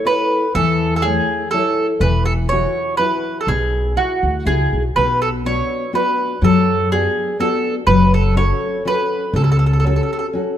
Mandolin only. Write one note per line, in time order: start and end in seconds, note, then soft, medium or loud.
0.07 0.52 B4 medium
0.55 0.94 A4 medium
0.96 1.03 A4 medium
1.02 1.48 G#4 medium
1.51 1.86 A4 medium
2.01 2.25 B4 medium
2.26 2.32 A4 medium
2.49 2.95 C#5 medium
2.97 3.37 B4 medium
3.41 3.47 A4 soft
3.48 3.94 G#4 medium
3.97 4.46 F#4 medium
4.47 4.82 G#4 medium
4.96 5.20 B4 medium
5.22 5.28 A4 medium
5.46 5.91 C#5 medium
5.95 6.44 B4 medium
6.44 6.89 A4 medium
6.92 7.37 G#4 medium
7.40 7.74 A4 medium
7.87 8.11 B4 medium
8.14 8.37 A4 medium
8.37 8.82 C#5 medium
8.88 9.36 B4 medium
9.36 9.43 A4 medium
9.44 9.51 A4 soft
9.52 9.58 A4 medium
9.59 9.65 A4 soft
9.66 9.72 A4 soft
9.73 9.78 A4 soft
9.80 9.85 A4 soft
9.87 9.95 A4 soft
9.96 10.02 A4 soft
10.03 10.10 A4 soft
10.13 10.18 A4 soft
10.19 10.26 A4 soft